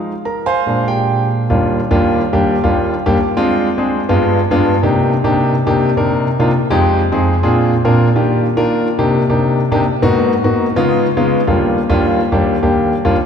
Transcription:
0.00 0.11 F3 medium
0.00 0.11 G#3 medium
0.00 0.12 D#4 medium
0.25 0.46 A#4 medium
0.25 0.46 A#5 medium
0.46 0.85 C5 medium
0.46 0.85 F5 medium
0.46 0.85 G#5 medium
0.46 0.85 C6 loud
0.66 1.46 A#2 medium
0.66 1.46 G#3 medium
0.66 1.46 D4 medium
0.88 1.26 G4 medium
0.88 1.26 G5 medium
1.50 1.79 D#2 medium
1.50 1.79 G3 medium
1.50 1.79 A#3 medium
1.50 1.79 D4 medium
1.50 1.79 F4 medium
1.91 2.20 D#2 medium
1.91 2.20 G3 medium
1.91 2.20 A#3 medium
1.91 2.20 D4 medium
1.91 2.20 F4 loud
2.33 2.55 D#2 medium
2.33 2.55 G3 medium
2.33 2.55 A#3 medium
2.33 2.55 D4 medium
2.33 2.55 G4 medium
2.64 2.93 D#2 medium
2.64 2.93 G3 medium
2.64 2.94 A#3 medium
2.64 2.93 D4 medium
2.64 2.93 F4 medium
3.06 3.17 D#2 medium
3.06 3.17 G3 medium
3.06 3.17 A#3 medium
3.06 3.17 D4 medium
3.06 3.17 G4 loud
3.37 3.66 G#3 medium
3.37 3.66 C4 medium
3.37 3.66 D4 medium
3.37 3.66 F4 loud
3.78 3.99 G#3 medium
3.78 3.99 C4 medium
3.78 3.99 D4 medium
3.78 4.00 G#4 medium
4.09 4.39 G2 medium
4.09 4.39 G#3 medium
4.09 4.39 B3 medium
4.09 4.39 D4 medium
4.09 4.39 F4 loud
4.51 4.73 G2 loud
4.51 4.73 G#3 medium
4.51 4.74 B3 medium
4.51 4.73 D4 medium
4.51 4.74 F4 loud
4.83 5.12 C3 medium
4.83 5.12 A#3 medium
4.83 5.12 D4 medium
4.83 5.12 D#4 medium
4.83 5.13 G4 loud
5.24 5.54 C3 medium
5.24 5.54 A#3 medium
5.24 5.54 D4 medium
5.24 5.54 D#4 medium
5.24 5.54 G4 loud
5.67 5.89 C3 medium
5.67 5.89 A#3 medium
5.67 5.89 D4 medium
5.67 5.89 D#4 medium
5.67 5.89 G4 loud
5.97 6.27 C3 medium
5.97 6.27 A#3 medium
5.97 6.27 D4 medium
5.97 6.27 D#4 medium
5.97 6.27 A#4 medium
6.39 6.50 C3 medium
6.39 6.50 A#3 medium
6.39 6.50 D4 medium
6.39 6.50 D#4 medium
6.39 6.50 F4 loud
6.70 7.00 F2 loud
6.70 7.00 G#3 medium
6.70 7.00 C4 medium
6.70 7.00 D#4 medium
6.70 7.00 G4 loud
7.12 7.33 F2 medium
7.12 7.33 G#3 medium
7.12 7.33 C4 medium
7.12 7.33 D#4 medium
7.12 7.33 G#4 loud
7.43 7.73 A#2 medium
7.43 7.73 C4 medium
7.43 7.73 D4 medium
7.43 7.73 F4 medium
7.43 7.73 G#4 loud
7.85 8.07 A#2 medium
7.85 8.07 C4 medium
7.85 8.07 D4 medium
7.85 8.07 F4 medium
7.85 8.07 A#4 loud
8.15 8.45 D#3 medium
8.15 8.45 A#3 medium
8.15 8.45 D4 medium
8.15 8.45 F4 medium
8.15 8.45 G4 medium
8.57 8.87 D#3 medium
8.57 8.87 A#3 medium
8.57 8.87 D4 medium
8.57 8.87 F4 medium
8.57 8.87 A#4 loud
8.98 9.21 C3 medium
8.98 9.21 A#3 medium
8.98 9.21 D4 medium
8.98 9.21 D#4 medium
8.98 9.21 G4 loud
9.29 9.60 C3 medium
9.29 9.60 A#3 medium
9.29 9.59 D4 medium
9.29 9.60 D#4 medium
9.29 9.60 G4 medium
9.72 9.83 C3 loud
9.72 9.83 A#3 medium
9.72 9.83 D4 medium
9.72 9.83 D#4 medium
9.72 9.83 G4 loud
10.02 10.32 G#2 loud
10.02 10.32 A#3 medium
10.02 10.32 B3 medium
10.02 10.32 D#4 medium
10.02 10.33 F#4 loud
10.44 10.66 G#2 medium
10.44 10.66 A#3 medium
10.44 10.66 B3 medium
10.44 10.66 D#4 medium
10.44 10.66 F#4 loud
10.76 11.06 C#3 medium
10.76 11.06 G#3 medium
10.76 11.06 B3 medium
10.76 11.06 D#4 medium
10.76 11.06 F4 loud
11.17 11.39 C#3 medium
11.17 11.39 G#3 medium
11.17 11.39 B3 medium
11.17 11.39 D#4 medium
11.17 11.39 F4 loud
11.47 11.77 D#2 medium
11.47 11.77 G3 medium
11.47 11.78 A#3 medium
11.47 11.77 D4 medium
11.47 11.78 F4 medium
11.89 12.19 D#2 medium
11.89 12.19 G3 medium
11.89 12.19 A#3 medium
11.89 12.19 D4 medium
11.89 12.19 F4 loud
12.32 12.54 D#2 medium
12.32 12.54 G3 medium
12.32 12.54 A#3 medium
12.32 12.54 D4 medium
12.32 12.54 G4 medium
12.63 12.92 D#2 medium
12.63 12.92 G3 medium
12.63 12.92 A#3 medium
12.63 12.92 D4 medium
12.63 12.92 G4 medium
13.05 13.15 D#2 medium
13.05 13.15 G3 medium
13.05 13.15 A#3 medium
13.05 13.15 D4 medium
13.05 13.15 F4 loud

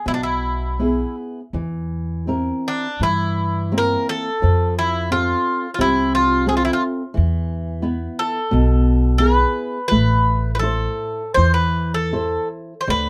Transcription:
0.06 1.02 B1 medium
0.06 0.77 B2 medium
0.06 0.13 E4 medium
0.14 0.21 D4 medium
0.23 1.15 E4 medium
0.79 1.39 B3 soft
0.79 1.40 E4 soft
0.79 1.40 G#4 soft
1.53 2.49 E2 medium
1.53 2.26 E3 medium
2.27 2.86 C4 soft
2.27 2.86 E4 soft
2.27 2.87 A#4 soft
2.68 3.03 D4 medium
3.00 3.92 G2 medium
3.00 3.71 E3 medium
3.00 3.76 E4 medium
3.72 4.29 A#3 soft
3.72 4.28 C4 soft
3.72 4.29 E4 soft
3.78 4.09 A#4 medium
4.09 4.74 A4 medium
4.42 5.32 F2 medium
4.42 5.09 F3 medium
4.79 5.10 E4 medium
5.11 5.66 C4 soft
5.11 5.66 F4 soft
5.11 5.69 F4 medium
5.11 5.67 A4 soft
5.74 5.80 F4 medium
5.78 6.68 C2 medium
5.78 6.45 C3 medium
5.78 6.14 E4 medium
6.15 6.46 F4 medium
6.47 7.02 C4 soft
6.47 7.02 F4 soft
6.47 6.56 G#4 medium
6.47 7.02 A4 soft
6.57 6.64 F4 medium
6.65 6.73 E4 medium
6.73 6.82 F4 medium
7.14 8.06 E2 medium
7.14 7.82 E3 medium
7.82 8.38 B3 soft
7.82 8.38 E4 soft
7.82 8.38 B4 soft
8.19 9.25 A4 medium
8.51 9.43 B1 medium
8.51 9.19 B2 medium
9.18 9.76 B3 soft
9.18 9.77 E4 soft
9.18 9.77 G#4 soft
9.18 9.87 B4 medium
9.88 10.86 A1 medium
9.88 10.61 A3 medium
9.88 10.50 B4 medium
10.55 10.59 B4 medium
10.59 11.22 E4 soft
10.59 11.34 A4 medium
10.59 11.22 A4 soft
10.63 11.22 C5 soft
11.34 12.35 E2 medium
11.34 12.11 E3 medium
11.34 11.53 C5 medium
11.54 11.94 B4 medium
11.94 12.47 A4 medium
12.13 12.73 E4 soft
12.13 12.73 A4 soft
12.13 12.73 C5 soft
12.81 12.88 C5 medium
12.88 13.09 D2 medium
12.88 13.09 D3 medium
12.88 13.09 B4 medium

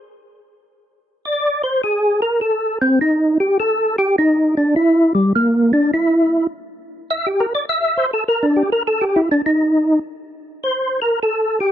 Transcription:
1.25 1.62 D5 medium
1.63 1.82 C5 loud
1.84 2.20 G#4 medium
2.22 2.40 A#4 loud
2.41 2.79 A4 medium
2.82 2.99 C4 medium
3.01 3.38 D#4 medium
3.40 3.58 G4 loud
3.60 3.96 A4 loud
3.98 4.16 G4 medium
4.18 4.55 D#4 medium
4.57 4.75 D4 loud
4.76 5.13 E4 loud
5.15 5.33 G3 medium
5.36 5.72 A#3 medium
5.73 5.91 D4 medium
5.94 6.47 E4 medium
7.11 7.28 E5 medium
7.27 7.46 G4 medium
7.40 7.53 A#4 medium
7.55 7.65 D5 medium
7.69 8.06 E5 loud
7.97 8.11 C5 medium
8.13 8.24 A4 medium
8.28 8.46 A#4 loud
8.43 8.63 D4 medium
8.56 8.70 G4 medium
8.72 8.83 A#4 loud
8.87 9.05 A4 medium
9.01 9.22 G4 medium
9.16 9.29 E4 medium
9.31 9.42 D4 medium
9.46 9.99 D#4 medium
10.63 11.00 C5 medium
11.02 11.20 A#4 medium
11.23 11.59 A4 medium
11.60 11.72 G4 medium

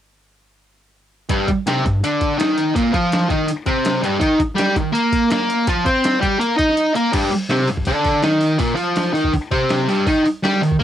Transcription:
1.29 1.47 G2 medium
1.29 1.48 G3 loud
1.29 kick loud
1.29 closed hi-hat medium
1.48 muted distorted electric guitar stroke medium
1.48 kick medium
1.48 closed hi-hat medium
1.67 1.84 C3 medium
1.67 1.84 C4 loud
1.67 snare loud
1.67 closed hi-hat medium
1.84 1.99 G2 medium
1.84 kick medium
1.84 closed hi-hat medium
2.04 2.37 D3 medium
2.04 2.39 D4 medium
2.04 closed hi-hat medium
2.21 kick medium
2.21 closed hi-hat medium
2.38 2.74 D#3 medium
2.38 2.75 D#4 loud
2.38 snare loud
2.38 closed hi-hat medium
2.58 closed hi-hat medium
2.75 2.93 A#2 medium
2.75 2.93 A#3 loud
2.75 kick loud
2.75 closed hi-hat medium
2.93 3.29 F3 medium
2.93 3.30 F4 medium
2.93 kick medium
2.93 closed hi-hat medium
3.12 snare loud
3.12 closed hi-hat medium
3.29 3.47 D#3 medium
3.29 3.48 D#4 medium
3.29 kick medium
3.29 closed hi-hat medium
3.47 muted distorted electric guitar stroke medium
3.47 closed hi-hat medium
3.66 4.02 C3 medium
3.66 4.02 C4 loud
3.66 kick medium
3.66 closed hi-hat medium
3.85 snare loud
3.85 closed hi-hat medium
4.02 4.20 G2 medium
4.02 4.21 G3 medium
4.02 closed hi-hat medium
4.19 4.38 D#3 medium
4.19 4.38 D#4 loud
4.19 kick loud
4.19 closed hi-hat medium
4.39 muted distorted electric guitar stroke medium
4.39 kick medium
4.39 closed hi-hat medium
4.55 4.74 G3 medium
4.55 4.75 G4 loud
4.55 closed hi-hat medium
4.59 snare loud
4.76 4.91 D#3 medium
4.76 kick medium
4.76 closed hi-hat medium
4.92 5.29 A#3 medium
4.92 5.30 A#4 medium
4.92 closed hi-hat medium
5.13 kick medium
5.13 closed hi-hat medium
5.30 5.67 A#3 medium
5.30 5.68 A#4 loud
5.30 snare loud
5.30 closed hi-hat medium
5.50 closed hi-hat medium
5.67 5.85 F3 medium
5.67 5.86 F4 medium
5.67 kick loud
5.67 closed hi-hat medium
5.85 6.20 C4 medium
5.85 6.21 C5 medium
5.85 kick medium
5.85 closed hi-hat medium
6.04 snare loud
6.04 closed hi-hat medium
6.21 6.39 G3 medium
6.21 6.40 G4 medium
6.21 kick medium
6.21 closed hi-hat medium
6.40 6.56 A#3 medium
6.40 6.57 A#4 medium
6.40 closed hi-hat medium
6.57 6.94 D#4 medium
6.57 6.94 D#5 loud
6.57 kick medium
6.57 closed hi-hat medium
6.69 snare soft
6.77 closed hi-hat medium
6.94 7.12 A#3 medium
6.94 7.14 A#4 medium
6.94 closed hi-hat medium
7.13 7.31 G2 medium
7.13 7.31 G3 medium
7.13 kick loud
7.13 open hi-hat medium
7.13 crash loud
7.32 muted distorted electric guitar stroke medium
7.32 open hi-hat soft
7.49 7.68 C3 medium
7.49 7.68 C4 medium
7.49 snare loud
7.49 open hi-hat medium
7.68 7.83 G2 medium
7.68 open hi-hat soft
7.77 kick medium
7.85 8.23 D3 medium
7.85 8.23 D4 medium
7.85 kick medium
7.85 open hi-hat medium
8.04 kick medium
8.04 open hi-hat medium
8.23 8.59 D#3 medium
8.23 8.59 D#4 medium
8.23 snare loud
8.23 open hi-hat medium
8.41 open hi-hat medium
8.59 8.75 A#2 medium
8.59 8.75 A#3 medium
8.59 kick loud
8.59 open hi-hat medium
8.75 9.13 F3 medium
8.75 9.13 F4 medium
8.75 open hi-hat soft
8.96 snare loud
8.96 open hi-hat medium
9.13 9.32 D#3 medium
9.13 9.32 D#4 medium
9.13 open hi-hat soft
9.24 kick medium
9.33 muted distorted electric guitar stroke soft
9.33 kick medium
9.33 open hi-hat medium
9.51 9.87 C3 medium
9.51 9.87 C4 loud
9.51 kick medium
9.51 open hi-hat soft
9.69 snare loud
9.69 open hi-hat medium
9.88 10.06 G2 medium
9.88 10.06 G3 medium
9.88 open hi-hat soft
10.07 10.24 D#3 medium
10.07 10.25 D#4 loud
10.07 kick loud
10.07 open hi-hat medium
10.25 muted distorted electric guitar stroke medium
10.25 open hi-hat soft
10.43 10.61 G3 medium
10.43 10.61 G4 medium
10.43 snare loud
10.43 open hi-hat medium
10.61 10.76 D#3 medium
10.61 open hi-hat soft
10.71 kick medium
10.79 10.83 A#3 medium
10.79 10.83 A#4 medium

